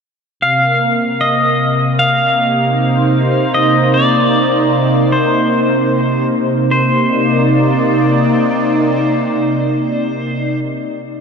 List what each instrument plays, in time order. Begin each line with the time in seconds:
0.40 analog synth pad C3, pedal steel guitar F5
0.57 analog synth pad A#3
1.21 pedal steel guitar D#5
1.99 pedal steel guitar F5
2.62 analog synth pad D#4
2.80 analog synth pad C5
3.54 pedal steel guitar D#5
3.94 pedal steel guitar D5
5.12 pedal steel guitar C5
6.71 analog synth pad C3, pedal steel guitar C5
6.83 analog synth pad A#3
6.96 analog synth pad D#4
7.07 analog synth pad D5